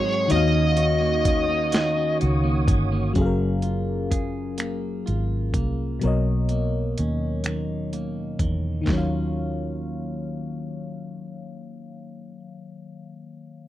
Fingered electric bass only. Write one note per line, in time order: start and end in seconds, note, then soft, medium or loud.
0.32 2.17 D#2 loud
2.23 2.65 C#2 medium
2.69 3.12 G1 medium
3.17 5.03 F#1 medium
5.08 5.54 G#1 medium
5.54 5.98 C2 medium
6.04 6.94 B1 medium
6.99 8.37 D#2 medium
8.40 8.84 E2 medium
8.88 11.92 D#2 medium